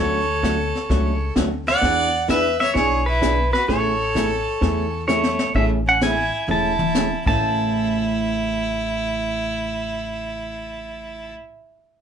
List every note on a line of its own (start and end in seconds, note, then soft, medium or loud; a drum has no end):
0.00 0.71 D2 medium
0.00 0.19 D3 medium
0.00 0.19 F#3 medium
0.00 0.20 A3 medium
0.00 0.20 C#4 medium
0.00 0.20 F#4 medium
0.00 1.33 A4 medium
0.00 1.33 C#5 medium
0.43 0.55 D3 medium
0.43 0.55 F#3 medium
0.43 0.55 A3 medium
0.43 0.56 C#4 medium
0.43 0.56 F#4 medium
0.43 kick soft
0.43 snare medium
0.43 hi-hat pedal soft
0.75 snare soft
0.89 1.29 C#2 medium
0.89 1.13 D3 medium
0.89 1.13 F#3 medium
0.89 1.13 A3 medium
0.89 1.13 C#4 medium
0.89 1.13 F#4 medium
0.89 brush sweep medium
0.89 kick soft
0.89 snare soft
1.36 1.76 D2 medium
1.36 1.48 D3 medium
1.36 1.48 F#3 medium
1.36 1.48 A3 medium
1.36 1.49 C#4 medium
1.36 1.49 F#4 medium
1.36 kick soft
1.36 snare medium
1.36 hi-hat pedal soft
1.67 2.25 D5 medium
1.67 2.30 F#5 loud
1.67 snare soft
1.81 2.57 E2 medium
1.81 2.05 E3 medium
1.81 2.05 B3 medium
1.81 2.05 D4 medium
1.81 2.06 G#4 medium
1.81 brush sweep soft
1.81 kick soft
1.81 snare soft
2.28 2.41 E3 medium
2.28 2.41 B3 medium
2.28 2.41 D4 medium
2.28 2.42 G#4 medium
2.28 2.59 B4 medium
2.28 2.59 E5 loud
2.28 kick soft
2.28 snare medium
2.28 hi-hat pedal medium
2.60 2.75 C#5 medium
2.60 2.76 E5 medium
2.60 snare soft
2.74 3.50 B1 medium
2.74 2.98 E3 medium
2.74 2.98 B3 medium
2.74 2.99 D4 medium
2.74 2.99 G#4 medium
2.74 3.06 G#4 medium
2.74 3.07 C#5 loud
2.74 brush sweep soft
2.74 kick soft
2.74 snare soft
3.06 3.51 E4 medium
3.06 3.52 B4 medium
3.22 3.34 E3 medium
3.22 3.34 B3 medium
3.22 3.34 D4 medium
3.22 3.35 G#4 medium
3.22 kick soft
3.22 snare medium
3.22 hi-hat pedal medium
3.53 3.68 F#4 medium
3.53 3.69 B4 medium
3.53 snare soft
3.68 4.43 A1 medium
3.68 3.91 C#3 medium
3.68 3.92 E3 medium
3.68 3.92 A3 medium
3.68 3.92 C#4 medium
3.68 3.92 G#4 medium
3.68 5.05 A4 medium
3.68 5.04 C#5 medium
3.68 brush sweep soft
3.68 kick soft
3.68 snare soft
4.15 4.27 C#3 medium
4.15 4.27 E3 medium
4.15 4.28 A3 medium
4.15 4.28 C#4 medium
4.15 4.28 G#4 medium
4.15 kick soft
4.15 snare medium
4.15 hi-hat pedal medium
4.61 5.36 E2 medium
4.61 4.85 C#3 medium
4.61 4.85 E3 medium
4.61 4.85 A3 medium
4.61 4.85 C#4 medium
4.61 4.85 G#4 medium
4.61 brush sweep medium
4.61 kick soft
4.61 snare soft
5.08 5.20 C#3 medium
5.08 5.20 E3 medium
5.08 5.21 A3 medium
5.08 5.52 A3 medium
5.08 5.21 C#4 medium
5.08 5.21 G#4 medium
5.08 5.55 C#5 medium
5.08 snare soft
5.08 hi-hat pedal medium
5.23 snare medium
5.39 snare medium
5.55 6.29 A1 medium
5.55 5.78 C#3 medium
5.55 5.78 E3 medium
5.55 5.70 A3 medium
5.55 5.78 A3 medium
5.55 5.78 C#4 medium
5.55 5.79 G#4 medium
5.55 5.64 E5 medium
5.55 brush sweep soft
5.55 kick soft
5.86 6.00 C#4 medium
5.86 6.02 F#5 medium
6.01 6.14 C#3 medium
6.01 6.14 E3 medium
6.01 6.14 A3 medium
6.01 6.14 C#4 medium
6.01 6.45 E4 medium
6.01 6.14 G#4 medium
6.01 6.50 G#5 loud
6.01 snare medium
6.01 hi-hat pedal medium
6.48 7.10 E1 medium
6.48 6.71 C#3 medium
6.48 6.71 E3 medium
6.48 6.71 A3 medium
6.48 6.72 C#4 medium
6.48 7.23 E4 medium
6.48 6.72 G#4 medium
6.48 7.24 A5 medium
6.48 mid tom soft
6.79 mid tom medium
6.95 7.07 C#3 medium
6.95 7.07 E3 medium
6.95 7.07 A3 medium
6.95 7.08 C#4 medium
6.95 7.08 G#4 medium
6.95 snare medium
6.95 hi-hat pedal medium
7.26 11.33 A1 medium
7.26 11.36 A2 medium
7.26 11.37 C#3 medium
7.26 11.38 E3 medium
7.26 11.39 A3 medium
7.26 11.39 C#4 medium
7.26 11.33 E4 medium
7.26 11.34 A5 medium
7.26 kick medium
7.26 crash medium